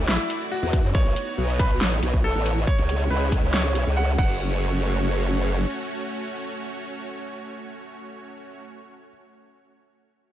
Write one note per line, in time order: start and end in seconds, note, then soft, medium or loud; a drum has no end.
0.00 0.18 D2 medium
0.00 0.91 A3 medium
0.00 0.93 E4 medium
0.00 2.63 F#4 medium
0.00 0.93 D5 medium
0.00 downlifter medium
0.08 0.40 E4 medium
0.08 snare loud
0.30 closed hi-hat medium
0.52 0.83 F#4 medium
0.63 0.82 E2 medium
0.73 kick loud
0.73 closed hi-hat medium
0.84 0.93 F#2 medium
0.95 1.15 B1 medium
0.95 2.66 B3 medium
0.95 2.66 D#4 medium
0.95 4.15 C#5 medium
0.95 1.51 C#5 medium
0.95 kick loud
1.06 closed hi-hat soft
1.16 closed hi-hat medium
1.38 1.79 B1 medium
1.59 2.16 B4 medium
1.59 kick loud
1.59 closed hi-hat medium
1.81 2.01 A1 medium
1.81 snare loud
2.03 2.34 B1 medium
2.03 closed hi-hat medium
2.14 kick medium
2.24 2.55 A4 medium
2.35 2.66 A1 medium
2.46 closed hi-hat medium
2.67 4.17 G#3 medium
2.67 4.17 C#4 medium
2.67 4.17 E4 medium
2.67 2.98 C#5 medium
2.67 kick loud
2.78 3.09 C#2 medium
2.78 closed hi-hat soft
2.89 closed hi-hat medium
3.10 3.41 C#2 medium
3.10 3.42 B4 medium
3.32 kick medium
3.32 closed hi-hat medium
3.43 3.85 C#2 medium
3.54 3.85 C#5 medium
3.54 snare loud
3.75 closed hi-hat medium
3.86 4.17 C#2 medium
3.97 4.17 F#5 medium
4.18 5.66 F#1 medium
4.18 8.61 A3 medium
4.18 8.61 C#4 medium
4.18 8.61 F#4 medium
4.18 8.61 C#5 medium
4.18 9.08 F#5 medium
4.18 kick loud
4.18 crash medium